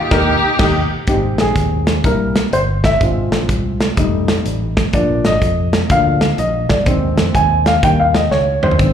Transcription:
0.00 0.88 A#3 medium
0.00 0.88 D#4 medium
0.00 0.92 G4 loud
0.11 0.33 D#2 loud
0.11 0.33 D#3 loud
0.11 0.33 D#4 loud
0.11 0.33 G4 loud
0.11 0.33 A#4 loud
0.11 kick loud
0.11 snare loud
0.59 0.81 D#2 loud
0.59 0.81 D#4 loud
0.59 0.81 G4 loud
0.59 kick loud
0.59 snare loud
0.59 crash medium
1.07 1.35 G#1 medium
1.07 2.00 G#3 medium
1.07 2.00 C4 soft
1.07 2.01 D#4 medium
1.07 1.41 G4 medium
1.07 kick loud
1.07 closed hi-hat medium
1.38 1.54 A#1 medium
1.38 2.07 G#4 medium
1.38 snare loud
1.38 closed hi-hat medium
1.56 1.97 D#2 medium
1.56 kick medium
1.56 closed hi-hat medium
1.87 snare loud
1.87 closed hi-hat medium
2.04 2.45 C2 medium
2.04 2.41 G3 soft
2.04 2.41 A#3 soft
2.04 2.41 E4 medium
2.04 2.54 A#4 medium
2.04 kick loud
2.04 closed hi-hat medium
2.36 snare loud
2.36 closed hi-hat medium
2.53 2.94 G1 medium
2.53 2.60 C5 medium
2.53 closed hi-hat medium
2.84 3.00 E5 medium
2.84 kick medium
2.84 snare loud
2.84 closed hi-hat medium
3.01 3.28 G#1 loud
3.01 3.94 G#3 medium
3.01 3.94 C4 soft
3.01 3.94 F4 medium
3.01 kick loud
3.01 closed hi-hat medium
3.32 3.49 A#1 medium
3.32 snare loud
3.32 closed hi-hat medium
3.49 3.90 C2 medium
3.49 kick medium
3.49 closed hi-hat medium
3.80 snare loud
3.80 closed hi-hat medium
3.97 4.38 F1 medium
3.97 4.73 G3 medium
3.97 4.74 A3 soft
3.97 4.74 D#4 medium
3.97 kick loud
3.97 closed hi-hat loud
4.28 snare loud
4.28 closed hi-hat medium
4.46 4.87 A1 medium
4.46 closed hi-hat medium
4.77 kick medium
4.77 snare loud
4.77 closed hi-hat medium
4.93 5.21 A#1 loud
4.93 5.30 F3 medium
4.93 5.30 A#3 soft
4.93 5.31 D4 medium
4.93 5.24 D5 medium
4.93 kick loud
4.93 closed hi-hat medium
5.25 5.40 G#1 medium
5.25 5.92 D#5 loud
5.25 snare loud
5.25 closed hi-hat medium
5.42 5.83 F2 medium
5.42 kick medium
5.42 closed hi-hat medium
5.73 snare loud
5.73 closed hi-hat medium
5.90 6.31 D2 medium
5.90 6.19 F3 soft
5.90 6.19 A#3 soft
5.90 6.19 D4 medium
5.90 6.36 F5 loud
5.90 kick loud
5.90 closed hi-hat loud
6.21 snare loud
6.21 closed hi-hat medium
6.38 6.65 A#1 medium
6.38 6.71 D#5 medium
6.38 closed hi-hat medium
6.69 6.84 C2 medium
6.69 6.86 D5 medium
6.69 kick medium
6.69 snare loud
6.69 closed hi-hat medium
6.86 7.14 D#2 loud
6.86 7.62 D#3 medium
6.86 7.62 G#3 soft
6.86 7.63 C4 medium
6.86 kick loud
6.86 closed hi-hat medium
7.17 7.32 F2 medium
7.17 snare loud
7.17 closed hi-hat medium
7.35 7.76 D#2 medium
7.35 7.68 G#5 medium
7.35 kick medium
7.35 closed hi-hat medium
7.66 7.82 F5 medium
7.66 snare loud
7.66 closed hi-hat medium
7.83 8.24 D#2 medium
7.83 8.19 D#3 medium
7.83 8.20 G3 medium
7.83 8.20 A#3 medium
7.83 8.00 G5 loud
7.83 kick loud
7.83 closed hi-hat loud
8.00 8.16 F5 medium
8.15 8.32 D#5 medium
8.15 snare loud
8.15 closed hi-hat medium
8.31 8.58 C#2 medium
8.31 8.61 C#5 medium
8.31 snare medium
8.63 8.77 D#2 medium
8.63 8.93 C5 medium
8.63 mid tom medium
8.71 floor tom medium
8.78 8.93 G#1 loud
8.78 8.93 D#3 medium
8.78 8.93 G#3 medium
8.78 8.93 C4 medium
8.78 kick loud
8.78 closed hi-hat medium

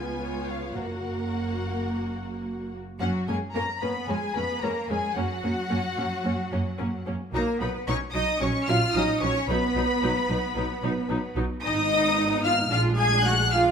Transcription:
0.00 0.75 C#2 soft
0.00 0.75 C#2 medium
0.00 0.74 B3 medium
0.00 0.74 F4 soft
0.00 0.21 B4 soft
0.00 0.48 G#5 medium
0.21 0.76 C#5 soft
0.49 0.77 F5 medium
0.76 2.80 F#1 medium
0.76 2.80 F#2 soft
0.76 2.80 A#3 medium
0.76 2.80 F#4 soft
0.76 2.73 A#4 soft
0.76 2.73 F#5 medium
3.00 3.08 F#2 medium
3.00 3.26 F#3 medium
3.00 3.09 A#3 medium
3.00 3.09 C#4 medium
3.00 3.26 F#4 medium
3.00 3.09 F#5 medium
3.27 3.35 F#2 medium
3.27 3.36 G#3 medium
3.27 3.36 A#3 medium
3.27 3.36 C#4 medium
3.27 3.37 G#4 medium
3.27 3.36 G#5 medium
3.55 3.63 F#2 medium
3.55 3.63 A#3 medium
3.55 3.63 C#4 medium
3.55 3.63 A#4 medium
3.55 3.82 A#5 medium
3.82 3.90 F#2 medium
3.82 3.90 A#3 soft
3.82 4.09 B3 medium
3.82 3.90 C#4 medium
3.82 3.90 B4 medium
3.82 4.09 B5 medium
4.08 4.16 F2 medium
4.08 4.17 G#3 medium
4.08 4.36 G#3 medium
4.08 4.17 C#4 medium
4.08 4.35 G#4 medium
4.08 4.36 G#5 medium
4.35 4.43 F2 medium
4.35 4.44 G#3 medium
4.35 4.63 B3 medium
4.35 4.44 C#4 medium
4.35 4.63 B4 medium
4.35 4.63 B5 loud
4.62 4.70 F2 medium
4.62 4.71 G#3 medium
4.62 4.90 A#3 medium
4.62 4.71 C#4 medium
4.62 4.90 A#4 medium
4.62 4.90 A#5 medium
4.89 4.97 F2 medium
4.89 5.17 G#3 medium
4.89 4.98 G#3 medium
4.89 4.98 C#4 medium
4.89 5.17 G#4 medium
4.89 5.16 G#5 loud
5.16 5.24 F#2 medium
5.16 7.03 F#3 medium
5.16 5.25 A#3 medium
5.16 5.25 C#4 medium
5.16 7.07 F#4 medium
5.16 7.07 F#5 loud
5.43 5.51 F#2 medium
5.43 5.52 A#3 medium
5.43 5.52 C#4 medium
5.70 5.78 F#2 medium
5.70 5.78 A#3 medium
5.70 5.78 C#4 medium
5.97 6.06 F#2 medium
5.97 6.05 A#3 medium
5.97 6.05 C#4 medium
6.24 6.33 F#2 medium
6.24 6.32 A#3 medium
6.24 6.33 C#4 medium
6.52 6.60 F#2 medium
6.52 6.60 A#3 medium
6.52 6.60 C#4 medium
6.79 6.88 F#2 medium
6.79 6.87 A#3 medium
6.79 6.87 C#4 medium
7.07 7.15 F#2 medium
7.07 7.15 A#3 medium
7.07 7.15 C#4 medium
7.34 7.42 B1 medium
7.34 7.42 F#3 medium
7.34 7.59 A#3 medium
7.34 7.42 D#4 medium
7.34 7.59 A#4 medium
7.34 7.42 A#5 loud
7.61 7.69 B1 medium
7.61 7.69 F#3 medium
7.61 7.88 B3 medium
7.61 7.69 D#4 medium
7.61 7.87 B4 medium
7.61 7.69 B5 medium
7.87 7.96 B1 medium
7.87 7.96 F#3 medium
7.87 7.96 C#4 medium
7.87 7.96 D#4 medium
7.87 7.95 C#5 loud
7.87 7.96 C#6 loud
8.14 8.23 B1 medium
8.14 8.23 F#3 medium
8.14 8.22 D#4 medium
8.14 8.41 D#4 medium
8.14 8.41 D#5 medium
8.14 8.41 D#6 loud
8.41 8.50 A#1 medium
8.41 8.49 F#3 medium
8.41 8.49 C#4 medium
8.41 8.68 C#4 medium
8.41 8.49 C#5 medium
8.41 8.68 C#6 loud
8.69 8.77 A#1 medium
8.69 8.77 F#3 medium
8.69 8.77 C#4 medium
8.69 8.96 F4 medium
8.69 8.77 F5 medium
8.69 8.96 F6 loud
8.95 9.03 A#1 medium
8.95 9.04 F#3 medium
8.95 9.04 C#4 medium
8.95 9.23 D#4 medium
8.95 9.22 D#5 medium
8.95 9.23 D#6 loud
9.21 9.30 A#1 medium
9.21 9.30 F#3 medium
9.21 9.49 C#4 medium
9.21 9.30 C#4 medium
9.21 9.48 C#5 medium
9.21 9.49 C#6 loud
9.48 9.57 B1 medium
9.48 9.57 F#3 medium
9.48 11.33 B3 medium
9.48 9.57 D#4 medium
9.48 11.33 B4 medium
9.48 11.33 B5 loud
9.76 9.84 B1 medium
9.76 9.84 F#3 medium
9.76 9.84 D#4 medium
10.02 10.11 B1 medium
10.02 10.11 F#3 medium
10.02 10.10 D#4 medium
10.29 10.37 B1 medium
10.29 10.37 F#3 medium
10.29 10.37 D#4 medium
10.56 10.64 B1 medium
10.56 10.64 F#3 medium
10.56 10.64 D#4 medium
10.83 10.91 B1 medium
10.83 10.91 F#3 medium
10.83 10.91 D#4 medium
11.09 11.18 B1 medium
11.09 11.17 F#3 medium
11.09 11.17 D#4 medium
11.36 11.45 B1 medium
11.36 11.44 F#3 medium
11.36 11.44 D#4 medium
11.63 12.68 G#1 medium
11.63 12.68 B3 medium
11.63 12.68 D#4 medium
11.63 12.41 D#4 loud
11.63 12.41 D#5 loud
11.63 12.41 D#6 loud
12.44 12.53 F4 medium
12.44 12.52 F5 loud
12.44 12.71 F6 loud
12.71 13.71 A#1 medium
12.71 13.71 G#3 medium
12.71 13.71 D4 medium
12.71 12.98 F4 medium
12.71 12.79 F5 medium
12.71 12.80 F6 loud
12.99 13.25 G#4 medium
12.99 13.25 G#5 medium
12.99 13.25 G#6 loud
13.24 13.34 F#4 loud
13.24 13.52 F#5 medium
13.24 13.52 F#6 loud
13.51 13.71 F4 medium
13.51 13.71 F5 loud
13.51 13.59 F6 loud

